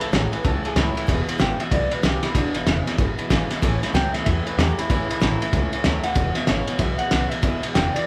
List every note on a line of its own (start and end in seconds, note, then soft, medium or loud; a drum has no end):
0.00 0.11 C#2 medium
0.00 0.11 A2 medium
0.00 0.12 E3 medium
0.00 0.12 A3 soft
0.00 0.13 C#4 medium
0.00 0.13 E4 medium
0.00 0.13 A4 medium
0.00 ride medium
0.12 0.29 A1 medium
0.12 0.31 A2 medium
0.12 0.33 A2 medium
0.12 0.33 E3 medium
0.12 0.31 F#3 medium
0.12 0.33 A3 medium
0.12 0.32 C#4 medium
0.12 0.31 E4 loud
0.12 0.33 G#4 medium
0.12 snare loud
0.12 ride medium
0.32 0.43 A2 medium
0.32 0.44 E3 medium
0.32 0.44 A3 soft
0.32 0.44 C#4 medium
0.32 0.44 E4 medium
0.32 0.45 B4 medium
0.32 ride medium
0.44 0.61 C#2 loud
0.44 0.63 A2 medium
0.44 0.65 E3 medium
0.44 0.63 E3 medium
0.44 0.65 A3 medium
0.44 0.64 C#4 medium
0.44 0.63 E4 medium
0.44 0.65 A4 medium
0.44 kick loud
0.44 ride medium
0.64 0.75 A2 medium
0.64 0.76 E3 medium
0.64 0.76 A3 soft
0.64 0.76 C#4 medium
0.64 0.76 E4 medium
0.64 0.77 G#4 medium
0.64 muted upright bass stroke medium
0.64 ride medium
0.75 0.93 C#2 loud
0.75 0.96 A2 medium
0.75 0.95 A2 medium
0.75 0.97 E3 medium
0.75 0.95 F#3 medium
0.75 0.97 A3 medium
0.75 0.96 C#4 medium
0.75 0.94 E4 medium
0.75 1.09 E4 medium
0.75 snare medium
0.75 ride medium
0.95 1.08 A2 medium
0.95 1.08 E3 medium
0.95 1.07 A3 soft
0.95 1.08 C#4 medium
0.95 1.08 E4 medium
0.95 muted upright bass stroke medium
0.95 ride medium
1.07 1.25 E1 loud
1.07 1.28 E2 medium
1.07 1.27 E2 medium
1.07 1.28 B2 medium
1.07 1.27 B2 medium
1.07 1.28 E3 medium
1.07 1.28 G#3 medium
1.07 1.27 B3 loud
1.07 1.26 E4 loud
1.07 kick loud
1.07 ride medium
1.27 1.39 E2 medium
1.27 1.40 B2 medium
1.27 1.38 E3 soft
1.27 1.39 G#3 medium
1.27 1.39 B3 medium
1.27 1.40 E4 medium
1.27 muted upright bass stroke medium
1.27 ride medium
1.38 1.57 G#1 loud
1.38 1.59 E2 medium
1.38 1.60 B2 medium
1.38 1.59 C#3 medium
1.38 1.60 E3 medium
1.38 1.60 G#3 medium
1.38 1.59 B3 medium
1.38 1.58 E4 medium
1.38 1.60 G5 medium
1.38 snare loud
1.38 ride medium
1.59 1.70 E2 medium
1.59 1.70 B2 medium
1.59 1.70 E3 soft
1.59 1.71 G#3 soft
1.59 1.72 B3 medium
1.59 1.72 E4 medium
1.59 1.72 E5 medium
1.59 muted upright bass stroke medium
1.59 ride medium
1.71 1.88 B1 loud
1.71 1.90 E2 medium
1.71 1.90 B2 medium
1.71 1.92 E3 medium
1.71 1.91 G#3 medium
1.71 1.90 B3 medium
1.71 1.89 E4 medium
1.71 1.91 D5 medium
1.71 kick loud
1.71 ride medium
1.90 2.03 E2 medium
1.90 2.03 B2 medium
1.90 2.02 E3 soft
1.90 2.03 G#3 soft
1.90 2.03 B3 medium
1.90 2.03 E4 soft
1.90 2.03 B4 medium
1.90 ride medium
2.03 2.20 B1 medium
2.03 2.23 E2 medium
2.03 2.22 E2 medium
2.03 2.24 B2 medium
2.03 2.22 C#3 medium
2.03 2.24 E3 medium
2.03 2.24 G#3 medium
2.03 2.22 B3 medium
2.03 2.21 E4 medium
2.03 2.24 G4 medium
2.03 snare loud
2.03 ride medium
2.23 2.34 E2 medium
2.23 2.34 B2 medium
2.23 2.34 E3 soft
2.23 2.35 G#3 soft
2.23 2.35 B3 soft
2.23 2.35 E4 medium
2.23 2.36 E4 medium
2.23 muted upright bass stroke medium
2.23 snare soft
2.23 ride medium
2.35 2.52 E1 loud
2.35 2.55 E2 medium
2.35 2.53 E2 medium
2.35 2.54 B2 medium
2.35 2.56 B2 medium
2.35 2.56 E3 medium
2.35 2.55 G#3 medium
2.35 2.54 B3 medium
2.35 2.56 D4 medium
2.35 2.53 E4 medium
2.35 kick loud
2.35 snare soft
2.35 ride loud
2.54 2.65 G#1 medium
2.54 2.65 E2 medium
2.54 2.66 B2 medium
2.54 2.66 E3 soft
2.54 2.67 G#3 soft
2.54 2.67 B3 medium
2.54 2.67 E4 soft
2.54 3.17 E4 medium
2.54 ride medium
2.66 2.83 E1 loud
2.66 2.85 E2 medium
2.66 2.87 E2 medium
2.66 2.87 B2 medium
2.66 2.85 C#3 medium
2.66 2.87 E3 medium
2.66 2.87 G#3 medium
2.66 2.86 B3 medium
2.66 2.85 E4 medium
2.66 snare loud
2.66 ride medium
2.86 2.98 E2 medium
2.86 2.98 B2 medium
2.86 2.96 E3 soft
2.86 2.98 G#3 medium
2.86 2.99 B3 medium
2.86 2.99 E4 medium
2.86 muted upright bass stroke medium
2.86 snare soft
2.86 ride medium
2.97 3.15 G#1 medium
2.97 3.17 E2 medium
2.97 3.17 B2 loud
2.97 3.18 E3 medium
2.97 3.19 G#3 medium
2.97 3.18 B3 medium
2.97 3.17 E4 medium
2.97 kick loud
2.97 ride medium
3.17 3.29 E2 medium
3.17 3.30 B2 medium
3.17 3.29 E3 soft
3.17 3.30 G#3 medium
3.17 3.30 B3 medium
3.17 3.30 E4 medium
3.17 muted upright bass stroke medium
3.17 ride medium
3.30 3.47 G#1 medium
3.30 3.50 E2 loud
3.30 3.49 E2 medium
3.30 3.50 B2 loud
3.30 3.49 C#3 medium
3.30 3.51 E3 medium
3.30 3.51 G#3 medium
3.30 3.50 B3 loud
3.30 3.49 E4 loud
3.30 kick medium
3.30 snare loud
3.30 ride medium
3.50 3.61 E2 medium
3.50 3.62 B2 medium
3.50 3.61 E3 medium
3.50 3.63 G#3 medium
3.50 3.63 B3 medium
3.50 3.62 E4 medium
3.50 muted upright bass stroke medium
3.50 snare soft
3.50 ride medium
3.62 3.79 A1 medium
3.62 3.82 A2 loud
3.62 3.81 A2 loud
3.62 3.83 E3 medium
3.62 3.81 E3 loud
3.62 3.83 A3 loud
3.62 3.82 C#4 loud
3.62 3.81 E4 loud
3.62 kick loud
3.62 snare soft
3.62 ride medium
3.82 3.94 A2 medium
3.82 3.94 E3 medium
3.82 3.94 A3 medium
3.82 3.94 C#4 medium
3.82 3.94 E4 medium
3.82 snare soft
3.82 ride medium
3.93 4.10 C#2 loud
3.93 4.14 A2 medium
3.93 4.13 A2 medium
3.93 4.14 E3 medium
3.93 4.13 F#3 medium
3.93 4.15 A3 medium
3.93 4.14 C#4 medium
3.93 4.12 E4 medium
3.93 4.13 G5 loud
3.93 snare loud
3.93 ride medium
4.13 4.25 A2 medium
4.13 4.26 E3 medium
4.13 4.26 A3 soft
4.13 4.26 C#4 medium
4.13 4.26 E4 medium
4.13 4.24 E5 medium
4.13 muted upright bass stroke medium
4.13 snare soft
4.13 ride medium
4.25 4.43 E2 medium
4.25 4.44 A2 medium
4.25 4.46 E3 medium
4.25 4.45 E3 medium
4.25 4.46 A3 medium
4.25 4.46 C#4 medium
4.25 4.45 E4 medium
4.25 4.45 E5 medium
4.25 kick loud
4.25 ride medium
4.45 4.57 A2 medium
4.45 4.57 E3 medium
4.45 4.58 A3 soft
4.45 4.59 C#4 soft
4.45 4.58 E4 medium
4.45 4.57 B4 medium
4.45 muted upright bass stroke medium
4.45 ride medium
4.57 4.74 E2 medium
4.57 4.76 A2 medium
4.57 4.78 A2 medium
4.57 4.78 E3 medium
4.57 4.76 F#3 medium
4.57 4.79 A3 medium
4.57 4.78 C#4 medium
4.57 4.76 E4 medium
4.57 4.77 G4 medium
4.57 snare loud
4.57 ride medium
4.77 4.89 A2 medium
4.77 4.89 E3 medium
4.77 4.90 A3 soft
4.77 4.90 C#4 soft
4.77 4.89 E4 medium
4.77 4.88 E4 loud
4.77 ride medium
4.90 5.06 A1 medium
4.90 5.09 A2 medium
4.90 5.08 A2 medium
4.90 5.10 E3 medium
4.90 5.08 E3 loud
4.90 5.10 A3 medium
4.90 5.10 C#4 medium
4.90 5.09 E4 medium
4.90 5.08 E4 medium
4.90 kick loud
4.90 ride medium
5.09 5.20 C#2 medium
5.09 5.21 A2 medium
5.09 5.21 E3 medium
5.09 5.20 A3 soft
5.09 5.21 C#4 soft
5.09 5.21 E4 medium
5.09 5.72 E4 loud
5.09 ride medium
5.20 5.38 A1 loud
5.20 5.41 A2 medium
5.20 5.40 A2 medium
5.20 5.41 E3 medium
5.20 5.40 F#3 loud
5.20 5.41 A3 medium
5.20 5.41 C#4 medium
5.20 5.39 E4 medium
5.20 snare loud
5.20 ride medium
5.41 5.52 A2 medium
5.41 5.53 E3 medium
5.41 5.52 A3 soft
5.41 5.53 C#4 medium
5.41 5.53 E4 medium
5.41 muted upright bass stroke medium
5.41 ride medium
5.52 5.69 C#2 loud
5.52 5.72 A2 medium
5.52 5.73 E3 medium
5.52 5.72 E3 medium
5.52 5.73 A3 medium
5.52 5.73 C#4 medium
5.52 5.71 E4 medium
5.52 kick loud
5.52 ride medium
5.72 5.84 A2 medium
5.72 5.84 E3 medium
5.72 5.84 A3 medium
5.72 5.85 C#4 medium
5.72 5.84 E4 medium
5.72 muted upright bass stroke medium
5.72 ride medium
5.84 6.01 D2 medium
5.84 6.04 A2 medium
5.84 6.03 A2 medium
5.84 6.05 E3 medium
5.84 6.03 F#3 medium
5.84 6.05 A3 medium
5.84 6.04 C#4 medium
5.84 6.02 E4 medium
5.84 6.04 E5 medium
5.84 snare loud
5.84 ride medium
6.03 6.16 A2 medium
6.03 6.16 E3 medium
6.03 6.16 A3 soft
6.03 6.16 C#4 medium
6.03 6.16 E4 medium
6.03 6.35 F#5 loud
6.03 muted upright bass stroke medium
6.03 ride medium
6.15 6.33 E1 medium
6.15 6.36 E2 medium
6.15 6.35 E2 medium
6.15 6.36 B2 medium
6.15 6.35 B2 medium
6.15 6.36 E3 medium
6.15 6.36 G#3 medium
6.15 6.36 B3 medium
6.15 6.35 E4 medium
6.15 kick loud
6.15 ride medium
6.35 6.47 E2 medium
6.35 6.48 B2 medium
6.35 6.48 E3 soft
6.35 6.48 G#3 soft
6.35 6.48 B3 soft
6.35 6.48 E4 medium
6.35 6.48 E5 loud
6.35 muted upright bass stroke medium
6.35 snare soft
6.35 ride medium
6.47 6.65 G#1 loud
6.47 6.68 E2 medium
6.47 6.66 E2 medium
6.47 6.68 B2 medium
6.47 6.67 C#3 medium
6.47 6.68 E3 medium
6.47 6.68 G#3 medium
6.47 6.67 B3 medium
6.47 6.66 E4 medium
6.47 6.78 C#5 medium
6.47 snare loud
6.47 ride medium
6.67 6.79 E2 medium
6.67 6.79 B2 medium
6.67 6.78 E3 medium
6.67 6.79 G#3 medium
6.67 6.79 B3 medium
6.67 6.79 E4 medium
6.67 muted upright bass stroke medium
6.67 ride medium
6.79 6.96 B1 medium
6.79 6.98 E2 medium
6.79 6.98 B2 loud
6.79 6.99 E3 medium
6.79 6.99 G#3 medium
6.79 6.99 B3 medium
6.79 6.98 E4 medium
6.79 6.98 E5 medium
6.79 kick loud
6.79 ride medium
6.98 7.11 E2 medium
6.98 7.11 B2 medium
6.98 7.11 E3 soft
6.98 7.11 G#3 soft
6.98 7.11 B3 medium
6.98 7.11 E4 medium
6.98 7.29 F#5 medium
6.98 muted upright bass stroke medium
6.98 ride medium
7.11 7.28 B1 medium
7.11 7.31 E2 medium
7.11 7.30 E2 medium
7.11 7.31 B2 medium
7.11 7.30 C#3 medium
7.11 7.32 E3 medium
7.11 7.31 G#3 medium
7.11 7.31 B3 medium
7.11 7.29 E4 medium
7.11 snare medium
7.11 ride medium
7.29 7.42 E2 medium
7.29 7.43 B2 medium
7.29 7.42 E3 soft
7.29 7.42 G#3 medium
7.29 7.43 B3 medium
7.29 7.43 E4 medium
7.29 7.61 E5 loud
7.29 muted upright bass stroke medium
7.29 ride medium
7.42 7.60 E1 loud
7.42 7.63 E2 medium
7.42 7.62 E2 medium
7.42 7.63 B2 medium
7.42 7.62 B2 medium
7.42 7.63 E3 medium
7.42 7.63 G#3 medium
7.42 7.62 B3 loud
7.42 7.61 E4 medium
7.42 kick loud
7.42 ride medium
7.62 7.73 G#1 medium
7.62 7.74 E2 medium
7.62 7.74 B2 medium
7.62 7.75 E3 soft
7.62 7.75 G#3 soft
7.62 7.75 B3 soft
7.62 7.75 E4 medium
7.62 ride medium
7.74 7.91 E1 loud
7.74 7.95 E2 medium
7.74 7.94 E2 medium
7.74 7.95 B2 medium
7.74 7.94 C#3 medium
7.74 7.95 E3 medium
7.74 7.95 G#3 medium
7.74 7.94 B3 medium
7.74 7.93 E4 medium
7.74 7.94 G5 loud
7.74 snare loud
7.74 ride medium
7.94 8.06 E2 medium
7.94 8.06 B2 medium
7.94 8.05 E3 soft
7.94 8.06 G#3 soft
7.94 8.07 B3 medium
7.94 8.07 E4 medium
7.94 8.06 D5 medium
7.94 muted upright bass stroke medium
7.94 ride medium